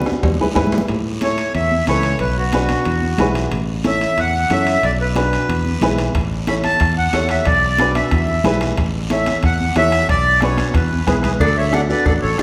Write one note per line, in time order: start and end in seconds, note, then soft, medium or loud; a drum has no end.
0.02 high conga medium
0.06 bombo rim medium
0.06 low timbale medium
0.06 short guiro medium
0.12 high conga medium
0.23 0.36 E2 medium
0.23 bombo low medium
0.23 bombo rim medium
0.23 low conga medium
0.23 low timbale medium
0.23 long guiro medium
0.40 0.45 E4 medium
0.40 0.45 G#4 medium
0.40 0.46 B4 medium
0.44 low conga medium
0.54 0.82 G#2 medium
0.54 0.78 E4 medium
0.54 0.78 G#4 medium
0.54 0.79 B4 loud
0.54 bombo low medium
0.54 bombo rim medium
0.54 low conga medium
0.54 low timbale medium
0.54 short guiro medium
0.67 low conga loud
0.72 bombo rim medium
0.72 low timbale medium
0.72 short guiro medium
0.78 low conga loud
0.88 1.42 A2 medium
0.88 high timbale medium
0.88 long guiro medium
1.06 high conga soft
1.21 1.45 E4 medium
1.21 1.45 A4 medium
1.21 1.53 C#5 medium
1.21 1.46 C#5 medium
1.21 high conga medium
1.21 high timbale medium
1.21 short guiro medium
1.38 high timbale medium
1.38 short guiro medium
1.54 1.81 E2 medium
1.54 1.85 E5 medium
1.54 high conga soft
1.54 high timbale medium
1.54 long guiro medium
1.72 high conga medium
1.87 2.14 C#2 medium
1.87 2.11 E4 medium
1.87 2.11 A4 medium
1.87 2.11 B4 medium
1.87 2.18 C#5 loud
1.87 high conga medium
1.87 high timbale medium
1.87 short guiro medium
2.03 high timbale medium
2.03 short guiro medium
2.19 2.73 B1 loud
2.19 2.37 B4 medium
2.19 high timbale medium
2.19 long guiro medium
2.37 3.32 F#4 medium
2.37 high conga soft
2.53 2.76 D4 medium
2.53 2.77 F#4 medium
2.53 2.77 B4 medium
2.53 high conga medium
2.53 high timbale medium
2.53 short guiro medium
2.69 high conga medium
2.69 high timbale medium
2.69 short guiro medium
2.85 3.13 E2 medium
2.85 high conga soft
2.85 high timbale medium
2.85 long guiro medium
3.02 high conga medium
3.18 3.46 B1 medium
3.18 3.42 E4 medium
3.18 3.42 G#4 medium
3.18 3.43 B4 medium
3.18 high conga medium
3.18 low conga medium
3.18 high timbale medium
3.18 low timbale medium
3.18 short guiro medium
3.35 high timbale medium
3.35 short guiro medium
3.52 4.05 A1 loud
3.52 high timbale medium
3.52 long guiro medium
3.69 high conga soft
3.84 4.08 E4 medium
3.84 4.08 A4 medium
3.84 4.08 C#5 medium
3.84 4.20 E5 loud
3.84 high conga medium
3.84 high timbale medium
3.84 short guiro medium
4.01 high timbale medium
4.01 short guiro medium
4.18 4.44 E2 medium
4.18 4.52 F#5 loud
4.18 high conga soft
4.18 high timbale medium
4.18 long guiro medium
4.50 4.77 F#2 medium
4.50 4.74 E4 medium
4.50 4.74 A4 medium
4.50 4.74 C#5 medium
4.50 4.85 E5 loud
4.50 high conga medium
4.50 high timbale medium
4.50 short guiro medium
4.67 high timbale medium
4.67 short guiro medium
4.83 5.36 B1 loud
4.83 4.91 D5 medium
4.83 high timbale medium
4.83 long guiro medium
4.99 5.95 B4 medium
4.99 high conga soft
5.15 5.39 D4 medium
5.15 5.39 F#4 medium
5.15 5.39 B4 medium
5.15 high conga medium
5.15 high timbale medium
5.15 short guiro medium
5.33 high timbale medium
5.33 short guiro medium
5.48 5.75 E2 medium
5.48 high conga soft
5.48 high timbale medium
5.48 long guiro medium
5.65 high conga medium
5.82 6.08 B1 medium
5.82 6.05 E4 medium
5.82 6.05 G#4 medium
5.82 6.06 B4 loud
5.82 high conga medium
5.82 low conga medium
5.82 high timbale medium
5.82 low timbale medium
5.82 short guiro medium
5.98 high timbale medium
5.98 short guiro medium
6.15 6.68 A1 medium
6.15 bombo low medium
6.15 bombo rim medium
6.15 high timbale medium
6.15 long guiro medium
6.31 high conga soft
6.47 6.71 E4 medium
6.47 6.71 A4 medium
6.47 6.71 C#5 medium
6.47 6.55 B5 medium
6.47 bombo rim medium
6.47 high conga medium
6.47 high timbale medium
6.47 short guiro medium
6.64 6.95 A5 medium
6.64 bombo rim medium
6.64 high conga medium
6.64 high timbale medium
6.64 short guiro medium
6.80 7.07 E2 medium
6.80 bombo low medium
6.80 bombo rim medium
6.80 high timbale medium
6.80 long guiro medium
6.98 7.28 F#5 medium
7.13 7.40 E2 medium
7.13 7.36 E4 medium
7.13 7.37 A4 medium
7.13 7.37 C#5 medium
7.13 bombo rim medium
7.13 high conga medium
7.13 high timbale medium
7.13 low timbale medium
7.13 short guiro medium
7.29 7.46 E5 medium
7.29 bombo rim medium
7.29 high timbale medium
7.29 short guiro medium
7.45 7.99 B1 loud
7.45 7.97 D5 medium
7.45 bombo low medium
7.45 bombo rim medium
7.45 high timbale medium
7.45 long guiro medium
7.63 high conga soft
7.78 8.03 D4 medium
7.78 8.02 F#4 medium
7.78 8.03 B4 medium
7.78 bombo rim medium
7.78 high conga medium
7.78 high timbale medium
7.78 short guiro medium
7.95 8.58 E5 medium
7.95 bombo rim medium
7.95 high conga medium
7.95 high timbale medium
7.95 short guiro medium
8.11 8.38 E2 medium
8.11 bombo low medium
8.11 bombo rim medium
8.11 high conga soft
8.11 high timbale medium
8.11 long guiro medium
8.28 high conga medium
8.44 8.71 B1 medium
8.44 8.68 E4 loud
8.44 8.68 G#4 medium
8.44 8.68 B4 loud
8.44 bombo rim medium
8.44 high conga medium
8.44 low conga medium
8.44 high timbale medium
8.44 low timbale medium
8.44 short guiro medium
8.61 bombo rim medium
8.61 low conga medium
8.61 high timbale medium
8.61 short guiro medium
8.77 9.31 A1 loud
8.77 bombo low medium
8.77 bombo rim medium
8.77 high timbale medium
8.77 long guiro medium
8.95 high conga soft
9.10 9.33 E4 medium
9.10 9.33 A4 medium
9.10 9.34 C#5 medium
9.10 9.42 E5 medium
9.10 bombo rim medium
9.10 high conga medium
9.10 high timbale medium
9.10 short guiro medium
9.26 bombo rim medium
9.26 high conga medium
9.26 high timbale medium
9.26 short guiro medium
9.43 9.70 E2 medium
9.43 9.75 F#5 loud
9.43 bombo low medium
9.43 bombo rim medium
9.43 high conga soft
9.43 high timbale medium
9.43 long guiro medium
9.61 high conga medium
9.75 10.03 E2 medium
9.75 9.99 E4 medium
9.75 9.99 A4 medium
9.75 9.99 C#5 medium
9.75 10.08 E5 loud
9.75 bombo rim medium
9.75 high conga medium
9.75 high timbale medium
9.75 low timbale medium
9.75 short guiro medium
9.92 bombo rim medium
9.92 high timbale medium
9.92 short guiro medium
10.09 10.62 B1 loud
10.09 10.40 D5 loud
10.09 bombo low medium
10.09 bombo rim medium
10.09 high timbale medium
10.09 long guiro medium
10.26 high conga soft
10.41 10.65 D4 medium
10.41 10.65 F#4 medium
10.41 10.66 B4 medium
10.41 10.67 C#5 medium
10.41 bombo rim medium
10.41 high conga medium
10.41 high timbale medium
10.41 short guiro medium
10.58 bombo rim medium
10.58 high conga medium
10.58 high timbale medium
10.58 short guiro medium
10.69 10.75 C#5 medium
10.74 11.01 E2 medium
10.74 11.06 B4 medium
10.74 bombo low medium
10.74 bombo rim medium
10.74 high timbale medium
10.74 long guiro medium
10.92 high conga medium
11.07 11.34 B1 medium
11.07 11.30 E4 medium
11.07 11.30 G#4 medium
11.07 11.15 G#4 medium
11.07 11.30 B4 medium
11.07 11.15 B4 medium
11.07 bombo low medium
11.07 bombo rim medium
11.07 high conga medium
11.07 low conga medium
11.07 high timbale medium
11.07 short guiro medium
11.23 11.32 G#4 medium
11.23 11.32 B4 medium
11.23 bombo rim medium
11.23 low conga medium
11.23 high timbale medium
11.23 short guiro medium
11.40 11.93 D2 loud
11.40 11.56 A4 medium
11.40 11.57 D5 medium
11.40 bombo low medium
11.40 cowbell loud
11.40 long guiro medium
11.57 11.73 C#5 medium
11.57 11.74 E5 medium
11.72 11.78 D4 medium
11.72 11.79 F#4 medium
11.72 11.79 A4 medium
11.72 11.81 D5 medium
11.72 11.81 F#5 medium
11.72 bombo rim medium
11.72 cowbell medium
11.72 high conga medium
11.72 short guiro medium
11.89 12.06 D4 medium
11.89 12.07 F#4 medium
11.89 12.07 A4 medium
11.89 12.05 B4 medium
11.89 12.04 D5 medium
11.89 short guiro medium
12.06 12.19 A1 loud
12.06 12.14 A4 medium
12.06 12.13 D5 medium
12.06 bombo low medium
12.06 bombo rim medium
12.06 cowbell medium
12.06 high conga soft
12.06 long guiro medium
12.22 12.36 A1 loud
12.22 12.38 A4 medium
12.22 12.37 C#5 medium
12.38 12.43 A1 loud
12.38 12.43 D4 medium
12.38 12.43 F#4 medium
12.38 12.43 A4 medium
12.38 bombo rim medium
12.38 cowbell medium
12.38 high conga medium
12.38 low timbale medium
12.38 short guiro medium